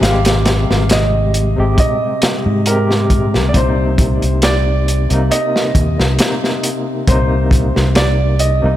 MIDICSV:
0, 0, Header, 1, 5, 480
1, 0, Start_track
1, 0, Key_signature, -3, "minor"
1, 0, Tempo, 882353
1, 10, Time_signature, 4, 2, 24, 8
1, 4769, End_track
2, 0, Start_track
2, 0, Title_t, "Felt piano"
2, 0, Program_c, 0, 0
2, 19, Note_on_c, 0, 77, 101
2, 473, Note_off_c, 0, 77, 0
2, 497, Note_on_c, 0, 75, 91
2, 952, Note_off_c, 0, 75, 0
2, 975, Note_on_c, 0, 75, 99
2, 1451, Note_on_c, 0, 70, 85
2, 1467, Note_off_c, 0, 75, 0
2, 1874, Note_off_c, 0, 70, 0
2, 1897, Note_on_c, 0, 74, 71
2, 1931, Note_off_c, 0, 74, 0
2, 1936, Note_on_c, 0, 72, 87
2, 2415, Note_on_c, 0, 74, 99
2, 2427, Note_off_c, 0, 72, 0
2, 2888, Note_on_c, 0, 75, 103
2, 2907, Note_off_c, 0, 74, 0
2, 3853, Note_on_c, 0, 72, 93
2, 3878, Note_off_c, 0, 75, 0
2, 4328, Note_on_c, 0, 74, 95
2, 4346, Note_off_c, 0, 72, 0
2, 4552, Note_off_c, 0, 74, 0
2, 4567, Note_on_c, 0, 75, 98
2, 4769, Note_off_c, 0, 75, 0
2, 4769, End_track
3, 0, Start_track
3, 0, Title_t, "Tine electric piano"
3, 0, Program_c, 1, 4
3, 0, Control_c, 1, 64, 127
3, 0, Note_on_c, 1, 48, 82
3, 0, Note_on_c, 1, 55, 96
3, 0, Note_on_c, 1, 56, 79
3, 0, Note_on_c, 1, 67, 100
3, 2, Note_off_c, 1, 48, 0
3, 2, Note_on_c, 1, 48, 94
3, 11, Note_off_c, 1, 56, 0
3, 11, Note_on_c, 1, 56, 86
3, 23, Note_off_c, 1, 67, 0
3, 23, Note_on_c, 1, 67, 100
3, 824, Note_off_c, 1, 48, 0
3, 828, Note_off_c, 1, 56, 0
3, 834, Note_off_c, 1, 67, 0
3, 851, Note_on_c, 1, 48, 91
3, 860, Note_on_c, 1, 56, 77
3, 868, Note_on_c, 1, 67, 93
3, 1419, Note_off_c, 1, 48, 0
3, 1424, Note_off_c, 1, 56, 0
3, 1428, Note_off_c, 1, 67, 0
3, 1447, Note_on_c, 1, 48, 87
3, 1453, Note_on_c, 1, 56, 77
3, 1455, Note_on_c, 1, 67, 95
3, 1902, Note_off_c, 1, 48, 0
3, 1905, Note_off_c, 1, 56, 0
3, 1906, Note_off_c, 1, 67, 0
3, 1920, Note_on_c, 1, 48, 85
3, 1929, Note_on_c, 1, 58, 76
3, 1937, Control_c, 1, 64, 0
3, 1940, Note_off_c, 1, 55, 0
3, 1940, Note_on_c, 1, 63, 97
3, 2039, Control_c, 1, 64, 127
3, 2743, Note_off_c, 1, 48, 0
3, 2747, Note_off_c, 1, 58, 0
3, 2753, Note_off_c, 1, 63, 0
3, 2772, Note_on_c, 1, 48, 86
3, 2781, Note_on_c, 1, 58, 78
3, 2791, Note_on_c, 1, 63, 91
3, 3340, Note_off_c, 1, 48, 0
3, 3345, Note_off_c, 1, 58, 0
3, 3350, Note_off_c, 1, 63, 0
3, 3368, Note_on_c, 1, 48, 81
3, 3372, Note_on_c, 1, 58, 74
3, 3378, Note_on_c, 1, 63, 90
3, 3822, Note_off_c, 1, 48, 0
3, 3824, Note_off_c, 1, 58, 0
3, 3827, Note_off_c, 1, 63, 0
3, 3848, Note_on_c, 1, 48, 88
3, 3856, Note_on_c, 1, 58, 77
3, 3866, Note_on_c, 1, 63, 103
3, 4667, Note_off_c, 1, 48, 0
3, 4671, Note_off_c, 1, 58, 0
3, 4676, Note_off_c, 1, 63, 0
3, 4688, Note_on_c, 1, 48, 89
3, 4697, Note_on_c, 1, 58, 76
3, 4708, Note_on_c, 1, 63, 94
3, 4769, Note_off_c, 1, 48, 0
3, 4769, Note_off_c, 1, 58, 0
3, 4769, Note_off_c, 1, 63, 0
3, 4769, End_track
4, 0, Start_track
4, 0, Title_t, "Fingered electric bass"
4, 0, Program_c, 2, 33
4, 7, Note_on_c, 2, 32, 107
4, 353, Note_off_c, 2, 32, 0
4, 383, Note_on_c, 2, 32, 78
4, 836, Note_off_c, 2, 32, 0
4, 861, Note_on_c, 2, 32, 103
4, 957, Note_off_c, 2, 32, 0
4, 1338, Note_on_c, 2, 44, 97
4, 1819, Note_on_c, 2, 36, 74
4, 1828, Note_off_c, 2, 44, 0
4, 1917, Note_off_c, 2, 36, 0
4, 1931, Note_on_c, 2, 36, 95
4, 2275, Note_off_c, 2, 36, 0
4, 2298, Note_on_c, 2, 36, 78
4, 2754, Note_off_c, 2, 36, 0
4, 2779, Note_on_c, 2, 36, 102
4, 2877, Note_off_c, 2, 36, 0
4, 3127, Note_on_c, 2, 39, 69
4, 3242, Note_off_c, 2, 39, 0
4, 3262, Note_on_c, 2, 36, 88
4, 3358, Note_off_c, 2, 36, 0
4, 3852, Note_on_c, 2, 36, 96
4, 4195, Note_off_c, 2, 36, 0
4, 4224, Note_on_c, 2, 36, 81
4, 4677, Note_off_c, 2, 36, 0
4, 4700, Note_on_c, 2, 36, 103
4, 4769, Note_off_c, 2, 36, 0
4, 4769, End_track
5, 0, Start_track
5, 0, Title_t, "Drums"
5, 15, Note_on_c, 9, 42, 82
5, 17, Note_on_c, 9, 38, 99
5, 69, Note_off_c, 9, 42, 0
5, 72, Note_off_c, 9, 38, 0
5, 135, Note_on_c, 9, 42, 87
5, 143, Note_on_c, 9, 38, 103
5, 190, Note_off_c, 9, 42, 0
5, 198, Note_off_c, 9, 38, 0
5, 248, Note_on_c, 9, 42, 77
5, 250, Note_on_c, 9, 38, 103
5, 302, Note_off_c, 9, 42, 0
5, 304, Note_off_c, 9, 38, 0
5, 384, Note_on_c, 9, 38, 56
5, 438, Note_off_c, 9, 38, 0
5, 486, Note_on_c, 9, 42, 91
5, 495, Note_on_c, 9, 38, 107
5, 541, Note_off_c, 9, 42, 0
5, 549, Note_off_c, 9, 38, 0
5, 730, Note_on_c, 9, 42, 63
5, 784, Note_off_c, 9, 42, 0
5, 967, Note_on_c, 9, 36, 112
5, 968, Note_on_c, 9, 42, 88
5, 1022, Note_off_c, 9, 36, 0
5, 1022, Note_off_c, 9, 42, 0
5, 1206, Note_on_c, 9, 42, 89
5, 1214, Note_on_c, 9, 38, 116
5, 1260, Note_off_c, 9, 42, 0
5, 1268, Note_off_c, 9, 38, 0
5, 1446, Note_on_c, 9, 42, 82
5, 1500, Note_off_c, 9, 42, 0
5, 1581, Note_on_c, 9, 38, 38
5, 1635, Note_off_c, 9, 38, 0
5, 1687, Note_on_c, 9, 36, 82
5, 1687, Note_on_c, 9, 42, 60
5, 1741, Note_off_c, 9, 36, 0
5, 1741, Note_off_c, 9, 42, 0
5, 1819, Note_on_c, 9, 38, 47
5, 1873, Note_off_c, 9, 38, 0
5, 1927, Note_on_c, 9, 36, 102
5, 1927, Note_on_c, 9, 42, 86
5, 1981, Note_off_c, 9, 36, 0
5, 1982, Note_off_c, 9, 42, 0
5, 2166, Note_on_c, 9, 36, 104
5, 2167, Note_on_c, 9, 42, 68
5, 2221, Note_off_c, 9, 36, 0
5, 2222, Note_off_c, 9, 42, 0
5, 2298, Note_on_c, 9, 42, 40
5, 2352, Note_off_c, 9, 42, 0
5, 2404, Note_on_c, 9, 42, 82
5, 2411, Note_on_c, 9, 38, 127
5, 2459, Note_off_c, 9, 42, 0
5, 2465, Note_off_c, 9, 38, 0
5, 2655, Note_on_c, 9, 42, 58
5, 2710, Note_off_c, 9, 42, 0
5, 2775, Note_on_c, 9, 42, 39
5, 2830, Note_off_c, 9, 42, 0
5, 2891, Note_on_c, 9, 42, 86
5, 2946, Note_off_c, 9, 42, 0
5, 3024, Note_on_c, 9, 38, 46
5, 3078, Note_off_c, 9, 38, 0
5, 3127, Note_on_c, 9, 36, 93
5, 3128, Note_on_c, 9, 42, 69
5, 3182, Note_off_c, 9, 36, 0
5, 3183, Note_off_c, 9, 42, 0
5, 3262, Note_on_c, 9, 38, 52
5, 3316, Note_off_c, 9, 38, 0
5, 3365, Note_on_c, 9, 42, 97
5, 3375, Note_on_c, 9, 38, 112
5, 3420, Note_off_c, 9, 42, 0
5, 3429, Note_off_c, 9, 38, 0
5, 3503, Note_on_c, 9, 38, 43
5, 3558, Note_off_c, 9, 38, 0
5, 3609, Note_on_c, 9, 42, 66
5, 3664, Note_off_c, 9, 42, 0
5, 3849, Note_on_c, 9, 36, 119
5, 3849, Note_on_c, 9, 42, 90
5, 3903, Note_off_c, 9, 42, 0
5, 3904, Note_off_c, 9, 36, 0
5, 4086, Note_on_c, 9, 36, 97
5, 4094, Note_on_c, 9, 42, 66
5, 4140, Note_off_c, 9, 36, 0
5, 4148, Note_off_c, 9, 42, 0
5, 4223, Note_on_c, 9, 38, 45
5, 4277, Note_off_c, 9, 38, 0
5, 4326, Note_on_c, 9, 42, 76
5, 4330, Note_on_c, 9, 38, 117
5, 4381, Note_off_c, 9, 42, 0
5, 4385, Note_off_c, 9, 38, 0
5, 4566, Note_on_c, 9, 42, 59
5, 4620, Note_off_c, 9, 42, 0
5, 4769, End_track
0, 0, End_of_file